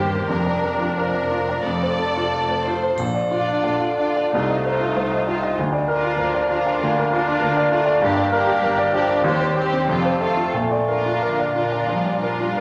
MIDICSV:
0, 0, Header, 1, 10, 480
1, 0, Start_track
1, 0, Key_signature, -2, "major"
1, 0, Tempo, 676437
1, 209, Time_signature, 4, 2, 24, 8
1, 1651, Tempo, 653595
1, 2611, Tempo, 699301
1, 3091, Tempo, 623053
1, 5011, Tempo, 605449
1, 6931, Tempo, 645856
1, 7891, Tempo, 673401
1, 9364, End_track
2, 0, Start_track
2, 0, Title_t, "Grand piano"
2, 0, Program_c, 0, 0
2, 0, Control_c, 0, 64, 127
2, 0, Note_on_c, 0, 39, 57
2, 0, Note_on_c, 0, 67, 36
2, 0, Note_on_c, 0, 70, 41
2, 0, Note_on_c, 0, 72, 42
2, 91, Note_off_c, 0, 70, 0
2, 91, Note_on_c, 0, 70, 36
2, 164, Note_off_c, 0, 67, 0
2, 185, Note_off_c, 0, 39, 0
2, 208, Note_on_c, 0, 41, 40
2, 210, Note_off_c, 0, 70, 0
2, 224, Control_c, 0, 64, 0
2, 226, Note_off_c, 0, 72, 0
2, 329, Note_on_c, 0, 74, 32
2, 357, Control_c, 0, 64, 127
2, 454, Note_on_c, 0, 70, 31
2, 524, Note_off_c, 0, 74, 0
2, 567, Note_on_c, 0, 65, 31
2, 646, Note_off_c, 0, 70, 0
2, 694, Note_on_c, 0, 70, 35
2, 762, Note_off_c, 0, 65, 0
2, 809, Note_on_c, 0, 74, 31
2, 886, Note_off_c, 0, 70, 0
2, 934, Note_on_c, 0, 65, 31
2, 1003, Note_off_c, 0, 74, 0
2, 1059, Note_on_c, 0, 74, 33
2, 1125, Note_off_c, 0, 65, 0
2, 1143, Note_off_c, 0, 41, 0
2, 1175, Note_off_c, 0, 74, 0
2, 1179, Note_on_c, 0, 41, 40
2, 1185, Control_c, 0, 64, 0
2, 1296, Note_on_c, 0, 72, 30
2, 1322, Control_c, 0, 64, 127
2, 1410, Note_on_c, 0, 69, 37
2, 1485, Note_off_c, 0, 72, 0
2, 1541, Note_on_c, 0, 65, 33
2, 1602, Note_off_c, 0, 69, 0
2, 1666, Note_on_c, 0, 69, 36
2, 1729, Note_off_c, 0, 65, 0
2, 1781, Note_on_c, 0, 72, 33
2, 1854, Note_off_c, 0, 69, 0
2, 1906, Note_on_c, 0, 65, 32
2, 1973, Note_off_c, 0, 72, 0
2, 2022, Note_on_c, 0, 72, 33
2, 2094, Note_off_c, 0, 65, 0
2, 2109, Note_off_c, 0, 41, 0
2, 2138, Note_off_c, 0, 72, 0
2, 2140, Note_on_c, 0, 34, 39
2, 2149, Control_c, 0, 64, 0
2, 2252, Note_on_c, 0, 74, 32
2, 2259, Control_c, 0, 64, 127
2, 2375, Note_on_c, 0, 65, 34
2, 2441, Note_off_c, 0, 74, 0
2, 2496, Note_on_c, 0, 62, 34
2, 2564, Note_off_c, 0, 65, 0
2, 2614, Note_on_c, 0, 74, 37
2, 2682, Note_off_c, 0, 62, 0
2, 2735, Note_on_c, 0, 65, 36
2, 2801, Note_off_c, 0, 74, 0
2, 2855, Note_on_c, 0, 62, 31
2, 2927, Note_off_c, 0, 65, 0
2, 2975, Note_on_c, 0, 74, 34
2, 3046, Note_off_c, 0, 62, 0
2, 3065, Note_off_c, 0, 34, 0
2, 3092, Note_off_c, 0, 74, 0
2, 3101, Note_on_c, 0, 36, 47
2, 3105, Control_c, 0, 64, 0
2, 3219, Note_on_c, 0, 75, 36
2, 3221, Control_c, 0, 64, 127
2, 3337, Note_on_c, 0, 72, 35
2, 3412, Note_off_c, 0, 75, 0
2, 3455, Note_on_c, 0, 65, 36
2, 3530, Note_off_c, 0, 72, 0
2, 3578, Note_on_c, 0, 72, 41
2, 3648, Note_off_c, 0, 65, 0
2, 3695, Note_on_c, 0, 75, 37
2, 3768, Note_off_c, 0, 72, 0
2, 3822, Note_on_c, 0, 65, 36
2, 3885, Note_off_c, 0, 75, 0
2, 3938, Note_on_c, 0, 75, 36
2, 4006, Note_off_c, 0, 65, 0
2, 4027, Note_off_c, 0, 36, 0
2, 4052, Note_off_c, 0, 75, 0
2, 4058, Note_on_c, 0, 38, 45
2, 4065, Control_c, 0, 64, 0
2, 4164, Note_on_c, 0, 74, 39
2, 4177, Control_c, 0, 64, 127
2, 4282, Note_on_c, 0, 70, 39
2, 4349, Note_off_c, 0, 74, 0
2, 4408, Note_on_c, 0, 65, 37
2, 4467, Note_off_c, 0, 70, 0
2, 4515, Note_on_c, 0, 70, 40
2, 4589, Note_off_c, 0, 65, 0
2, 4642, Note_on_c, 0, 74, 41
2, 4708, Note_off_c, 0, 70, 0
2, 4764, Note_on_c, 0, 65, 32
2, 4839, Note_off_c, 0, 74, 0
2, 4889, Note_on_c, 0, 74, 41
2, 4962, Note_off_c, 0, 65, 0
2, 4983, Note_off_c, 0, 38, 0
2, 5015, Note_on_c, 0, 38, 48
2, 5085, Note_off_c, 0, 74, 0
2, 5137, Note_on_c, 0, 70, 36
2, 5255, Note_on_c, 0, 65, 49
2, 5324, Note_off_c, 0, 70, 0
2, 5364, Note_on_c, 0, 62, 44
2, 5440, Note_off_c, 0, 65, 0
2, 5481, Note_on_c, 0, 70, 42
2, 5552, Note_off_c, 0, 62, 0
2, 5601, Note_on_c, 0, 74, 49
2, 5669, Note_off_c, 0, 70, 0
2, 5719, Note_on_c, 0, 65, 47
2, 5788, Note_off_c, 0, 74, 0
2, 5829, Note_on_c, 0, 74, 49
2, 5907, Note_off_c, 0, 65, 0
2, 5930, Note_off_c, 0, 38, 0
2, 5951, Note_off_c, 0, 74, 0
2, 5958, Note_on_c, 0, 43, 57
2, 5967, Control_c, 0, 64, 0
2, 6072, Note_on_c, 0, 74, 47
2, 6086, Control_c, 0, 64, 127
2, 6197, Note_on_c, 0, 70, 46
2, 6269, Note_off_c, 0, 74, 0
2, 6316, Note_on_c, 0, 67, 46
2, 6393, Note_off_c, 0, 70, 0
2, 6441, Note_on_c, 0, 70, 47
2, 6513, Note_off_c, 0, 67, 0
2, 6560, Note_on_c, 0, 74, 51
2, 6635, Note_off_c, 0, 70, 0
2, 6687, Note_on_c, 0, 67, 47
2, 6755, Note_off_c, 0, 74, 0
2, 6805, Note_on_c, 0, 74, 46
2, 6881, Note_off_c, 0, 67, 0
2, 6902, Note_off_c, 0, 43, 0
2, 6926, Note_on_c, 0, 39, 68
2, 6928, Note_off_c, 0, 74, 0
2, 6944, Control_c, 0, 64, 0
2, 7046, Note_on_c, 0, 72, 45
2, 7063, Control_c, 0, 64, 127
2, 7166, Note_on_c, 0, 67, 48
2, 7237, Note_off_c, 0, 72, 0
2, 7290, Note_on_c, 0, 60, 46
2, 7357, Note_off_c, 0, 67, 0
2, 7389, Note_off_c, 0, 39, 0
2, 7407, Note_off_c, 0, 60, 0
2, 7410, Note_on_c, 0, 41, 51
2, 7419, Control_c, 0, 64, 0
2, 7529, Note_on_c, 0, 72, 45
2, 7551, Control_c, 0, 64, 127
2, 7645, Note_on_c, 0, 69, 39
2, 7718, Note_off_c, 0, 72, 0
2, 7764, Note_on_c, 0, 65, 37
2, 7840, Note_off_c, 0, 69, 0
2, 7877, Note_off_c, 0, 41, 0
2, 7888, Note_off_c, 0, 65, 0
2, 7892, Note_on_c, 0, 46, 46
2, 7904, Control_c, 0, 64, 0
2, 8010, Control_c, 0, 64, 127
2, 8015, Note_on_c, 0, 74, 38
2, 8134, Note_on_c, 0, 70, 33
2, 8207, Note_off_c, 0, 74, 0
2, 8261, Note_on_c, 0, 65, 39
2, 8327, Note_off_c, 0, 70, 0
2, 8378, Note_on_c, 0, 70, 36
2, 8451, Note_off_c, 0, 65, 0
2, 8501, Note_on_c, 0, 74, 34
2, 8569, Note_off_c, 0, 70, 0
2, 8616, Note_on_c, 0, 65, 32
2, 8689, Note_off_c, 0, 74, 0
2, 8734, Note_on_c, 0, 74, 35
2, 8805, Note_off_c, 0, 65, 0
2, 8825, Note_off_c, 0, 46, 0
2, 8851, Note_on_c, 0, 53, 36
2, 8923, Note_off_c, 0, 74, 0
2, 8974, Note_on_c, 0, 74, 31
2, 9040, Note_off_c, 0, 53, 0
2, 9097, Note_on_c, 0, 70, 34
2, 9162, Note_off_c, 0, 74, 0
2, 9220, Note_on_c, 0, 65, 32
2, 9284, Note_off_c, 0, 70, 0
2, 9341, Note_on_c, 0, 70, 35
2, 9364, Note_off_c, 0, 65, 0
2, 9364, Note_off_c, 0, 70, 0
2, 9364, End_track
3, 0, Start_track
3, 0, Title_t, "Violin section"
3, 0, Program_c, 1, 48
3, 0, Note_on_c, 1, 72, 49
3, 188, Note_off_c, 1, 72, 0
3, 197, Note_on_c, 1, 70, 37
3, 1147, Note_off_c, 1, 70, 0
3, 1172, Note_on_c, 1, 69, 36
3, 1983, Note_off_c, 1, 69, 0
3, 2368, Note_on_c, 1, 74, 37
3, 2838, Note_off_c, 1, 74, 0
3, 2849, Note_on_c, 1, 74, 30
3, 3085, Note_off_c, 1, 74, 0
3, 3104, Note_on_c, 1, 72, 33
3, 3330, Note_off_c, 1, 72, 0
3, 3339, Note_on_c, 1, 72, 34
3, 3806, Note_off_c, 1, 72, 0
3, 3823, Note_on_c, 1, 72, 31
3, 4049, Note_off_c, 1, 72, 0
3, 4283, Note_on_c, 1, 70, 40
3, 4747, Note_off_c, 1, 70, 0
3, 4757, Note_on_c, 1, 70, 39
3, 5240, Note_off_c, 1, 70, 0
3, 5249, Note_on_c, 1, 70, 40
3, 5706, Note_off_c, 1, 70, 0
3, 5716, Note_on_c, 1, 70, 36
3, 5945, Note_off_c, 1, 70, 0
3, 5955, Note_on_c, 1, 70, 45
3, 6186, Note_off_c, 1, 70, 0
3, 6196, Note_on_c, 1, 70, 47
3, 6674, Note_off_c, 1, 70, 0
3, 6690, Note_on_c, 1, 70, 43
3, 6927, Note_off_c, 1, 70, 0
3, 6932, Note_on_c, 1, 72, 46
3, 7156, Note_off_c, 1, 72, 0
3, 7165, Note_on_c, 1, 72, 41
3, 7399, Note_off_c, 1, 72, 0
3, 7404, Note_on_c, 1, 69, 44
3, 7637, Note_off_c, 1, 69, 0
3, 7646, Note_on_c, 1, 69, 34
3, 7885, Note_off_c, 1, 69, 0
3, 8132, Note_on_c, 1, 70, 38
3, 8605, Note_off_c, 1, 70, 0
3, 8616, Note_on_c, 1, 70, 31
3, 9074, Note_off_c, 1, 70, 0
3, 9083, Note_on_c, 1, 70, 32
3, 9364, Note_off_c, 1, 70, 0
3, 9364, End_track
4, 0, Start_track
4, 0, Title_t, "Violin section"
4, 0, Program_c, 2, 48
4, 0, Note_on_c, 2, 67, 46
4, 212, Note_off_c, 2, 67, 0
4, 215, Note_on_c, 2, 70, 34
4, 639, Note_off_c, 2, 70, 0
4, 691, Note_on_c, 2, 70, 41
4, 1143, Note_off_c, 2, 70, 0
4, 1167, Note_on_c, 2, 74, 48
4, 1893, Note_off_c, 2, 74, 0
4, 1897, Note_on_c, 2, 72, 38
4, 2136, Note_off_c, 2, 72, 0
4, 2378, Note_on_c, 2, 65, 33
4, 2841, Note_off_c, 2, 65, 0
4, 2849, Note_on_c, 2, 65, 31
4, 3085, Note_off_c, 2, 65, 0
4, 3094, Note_on_c, 2, 65, 35
4, 3334, Note_off_c, 2, 65, 0
4, 3343, Note_on_c, 2, 65, 36
4, 3808, Note_off_c, 2, 65, 0
4, 3820, Note_on_c, 2, 65, 35
4, 4047, Note_off_c, 2, 65, 0
4, 4288, Note_on_c, 2, 65, 39
4, 4752, Note_off_c, 2, 65, 0
4, 4772, Note_on_c, 2, 65, 36
4, 5248, Note_off_c, 2, 65, 0
4, 5263, Note_on_c, 2, 65, 44
4, 5715, Note_off_c, 2, 65, 0
4, 5724, Note_on_c, 2, 65, 43
4, 5953, Note_off_c, 2, 65, 0
4, 5956, Note_on_c, 2, 67, 39
4, 6193, Note_off_c, 2, 67, 0
4, 6203, Note_on_c, 2, 67, 43
4, 6677, Note_off_c, 2, 67, 0
4, 6688, Note_on_c, 2, 67, 45
4, 6919, Note_off_c, 2, 67, 0
4, 6928, Note_on_c, 2, 67, 46
4, 7160, Note_off_c, 2, 67, 0
4, 7170, Note_on_c, 2, 67, 42
4, 7402, Note_off_c, 2, 67, 0
4, 7407, Note_on_c, 2, 65, 45
4, 7631, Note_off_c, 2, 65, 0
4, 7640, Note_on_c, 2, 65, 43
4, 7882, Note_off_c, 2, 65, 0
4, 8132, Note_on_c, 2, 65, 39
4, 8605, Note_off_c, 2, 65, 0
4, 8615, Note_on_c, 2, 65, 33
4, 9079, Note_off_c, 2, 65, 0
4, 9090, Note_on_c, 2, 65, 33
4, 9364, Note_off_c, 2, 65, 0
4, 9364, End_track
5, 0, Start_track
5, 0, Title_t, "Viola section"
5, 0, Program_c, 3, 48
5, 0, Note_on_c, 3, 58, 37
5, 205, Note_off_c, 3, 58, 0
5, 207, Note_on_c, 3, 62, 39
5, 1171, Note_off_c, 3, 62, 0
5, 1173, Note_on_c, 3, 57, 34
5, 1967, Note_off_c, 3, 57, 0
5, 2364, Note_on_c, 3, 62, 30
5, 2836, Note_off_c, 3, 62, 0
5, 2851, Note_on_c, 3, 62, 32
5, 3086, Note_off_c, 3, 62, 0
5, 3088, Note_on_c, 3, 63, 34
5, 3325, Note_off_c, 3, 63, 0
5, 3334, Note_on_c, 3, 63, 35
5, 3804, Note_off_c, 3, 63, 0
5, 3811, Note_on_c, 3, 63, 29
5, 4043, Note_off_c, 3, 63, 0
5, 4282, Note_on_c, 3, 62, 35
5, 4748, Note_off_c, 3, 62, 0
5, 4760, Note_on_c, 3, 62, 39
5, 5242, Note_off_c, 3, 62, 0
5, 5251, Note_on_c, 3, 62, 43
5, 5709, Note_off_c, 3, 62, 0
5, 5723, Note_on_c, 3, 62, 36
5, 5950, Note_off_c, 3, 62, 0
5, 5959, Note_on_c, 3, 62, 43
5, 6195, Note_off_c, 3, 62, 0
5, 6210, Note_on_c, 3, 62, 43
5, 6681, Note_off_c, 3, 62, 0
5, 6692, Note_on_c, 3, 62, 40
5, 6928, Note_off_c, 3, 62, 0
5, 6935, Note_on_c, 3, 60, 47
5, 7164, Note_off_c, 3, 60, 0
5, 7172, Note_on_c, 3, 60, 44
5, 7399, Note_off_c, 3, 60, 0
5, 7408, Note_on_c, 3, 60, 42
5, 7640, Note_off_c, 3, 60, 0
5, 7653, Note_on_c, 3, 60, 36
5, 7889, Note_off_c, 3, 60, 0
5, 8142, Note_on_c, 3, 62, 34
5, 8611, Note_off_c, 3, 62, 0
5, 8624, Note_on_c, 3, 62, 32
5, 9084, Note_off_c, 3, 62, 0
5, 9098, Note_on_c, 3, 62, 30
5, 9364, Note_off_c, 3, 62, 0
5, 9364, End_track
6, 0, Start_track
6, 0, Title_t, "Bassoon"
6, 0, Program_c, 4, 70
6, 0, Note_on_c, 4, 55, 61
6, 206, Note_off_c, 4, 55, 0
6, 210, Note_on_c, 4, 55, 60
6, 694, Note_on_c, 4, 53, 42
6, 705, Note_off_c, 4, 55, 0
6, 1896, Note_off_c, 4, 53, 0
6, 2611, Note_on_c, 4, 50, 52
6, 3093, Note_on_c, 4, 57, 57
6, 3104, Note_off_c, 4, 50, 0
6, 3813, Note_on_c, 4, 55, 46
6, 3824, Note_off_c, 4, 57, 0
6, 4048, Note_off_c, 4, 55, 0
6, 4513, Note_on_c, 4, 53, 55
6, 5010, Note_on_c, 4, 58, 71
6, 5022, Note_off_c, 4, 53, 0
6, 5720, Note_on_c, 4, 57, 69
6, 5732, Note_off_c, 4, 58, 0
6, 5956, Note_off_c, 4, 57, 0
6, 5959, Note_on_c, 4, 58, 89
6, 6690, Note_on_c, 4, 53, 70
6, 6702, Note_off_c, 4, 58, 0
6, 6935, Note_on_c, 4, 55, 69
6, 6946, Note_off_c, 4, 53, 0
6, 7650, Note_on_c, 4, 57, 64
6, 7661, Note_off_c, 4, 55, 0
6, 7892, Note_off_c, 4, 57, 0
6, 7897, Note_on_c, 4, 57, 72
6, 8381, Note_on_c, 4, 58, 51
6, 8391, Note_off_c, 4, 57, 0
6, 9331, Note_off_c, 4, 58, 0
6, 9364, End_track
7, 0, Start_track
7, 0, Title_t, "Timpani"
7, 0, Program_c, 5, 47
7, 2139, Note_on_c, 5, 46, 46
7, 2823, Note_off_c, 5, 46, 0
7, 9364, End_track
8, 0, Start_track
8, 0, Title_t, "Cello section"
8, 0, Program_c, 6, 48
8, 0, Note_on_c, 6, 43, 42
8, 209, Note_off_c, 6, 43, 0
8, 215, Note_on_c, 6, 41, 44
8, 1156, Note_off_c, 6, 41, 0
8, 1174, Note_on_c, 6, 41, 34
8, 1968, Note_off_c, 6, 41, 0
8, 2137, Note_on_c, 6, 46, 50
8, 2533, Note_off_c, 6, 46, 0
8, 2612, Note_on_c, 6, 46, 45
8, 3017, Note_off_c, 6, 46, 0
8, 3095, Note_on_c, 6, 36, 44
8, 3502, Note_off_c, 6, 36, 0
8, 3587, Note_on_c, 6, 36, 43
8, 3978, Note_off_c, 6, 36, 0
8, 4058, Note_on_c, 6, 38, 55
8, 4441, Note_off_c, 6, 38, 0
8, 4522, Note_on_c, 6, 38, 48
8, 4933, Note_off_c, 6, 38, 0
8, 5014, Note_on_c, 6, 38, 55
8, 5411, Note_off_c, 6, 38, 0
8, 5491, Note_on_c, 6, 38, 49
8, 5881, Note_off_c, 6, 38, 0
8, 5960, Note_on_c, 6, 43, 62
8, 6365, Note_off_c, 6, 43, 0
8, 6442, Note_on_c, 6, 43, 61
8, 6849, Note_off_c, 6, 43, 0
8, 6929, Note_on_c, 6, 39, 61
8, 7327, Note_off_c, 6, 39, 0
8, 7406, Note_on_c, 6, 41, 54
8, 7810, Note_off_c, 6, 41, 0
8, 7888, Note_on_c, 6, 46, 53
8, 8297, Note_off_c, 6, 46, 0
8, 8376, Note_on_c, 6, 50, 40
8, 8824, Note_off_c, 6, 50, 0
8, 8856, Note_on_c, 6, 55, 51
8, 9364, Note_off_c, 6, 55, 0
8, 9364, End_track
9, 0, Start_track
9, 0, Title_t, "Double bass section"
9, 0, Program_c, 7, 48
9, 0, Note_on_c, 7, 31, 43
9, 210, Note_off_c, 7, 31, 0
9, 211, Note_on_c, 7, 29, 43
9, 1154, Note_off_c, 7, 29, 0
9, 1171, Note_on_c, 7, 29, 36
9, 1966, Note_off_c, 7, 29, 0
9, 2131, Note_on_c, 7, 34, 46
9, 2530, Note_off_c, 7, 34, 0
9, 2607, Note_on_c, 7, 34, 41
9, 3015, Note_off_c, 7, 34, 0
9, 3090, Note_on_c, 7, 36, 43
9, 3500, Note_off_c, 7, 36, 0
9, 3574, Note_on_c, 7, 36, 47
9, 3971, Note_off_c, 7, 36, 0
9, 4045, Note_on_c, 7, 38, 53
9, 4434, Note_off_c, 7, 38, 0
9, 4509, Note_on_c, 7, 38, 48
9, 4927, Note_off_c, 7, 38, 0
9, 5011, Note_on_c, 7, 38, 55
9, 5409, Note_off_c, 7, 38, 0
9, 5482, Note_on_c, 7, 38, 61
9, 5876, Note_off_c, 7, 38, 0
9, 5956, Note_on_c, 7, 31, 57
9, 6363, Note_off_c, 7, 31, 0
9, 6436, Note_on_c, 7, 31, 59
9, 6846, Note_off_c, 7, 31, 0
9, 6927, Note_on_c, 7, 39, 57
9, 7326, Note_off_c, 7, 39, 0
9, 7403, Note_on_c, 7, 29, 57
9, 7808, Note_off_c, 7, 29, 0
9, 7888, Note_on_c, 7, 34, 53
9, 8297, Note_off_c, 7, 34, 0
9, 8379, Note_on_c, 7, 34, 39
9, 8778, Note_off_c, 7, 34, 0
9, 8852, Note_on_c, 7, 34, 39
9, 9252, Note_off_c, 7, 34, 0
9, 9327, Note_on_c, 7, 34, 39
9, 9364, Note_off_c, 7, 34, 0
9, 9364, End_track
10, 0, Start_track
10, 0, Title_t, "Drums"
10, 2129, Note_on_c, 9, 81, 29
10, 2202, Note_off_c, 9, 81, 0
10, 9364, End_track
0, 0, End_of_file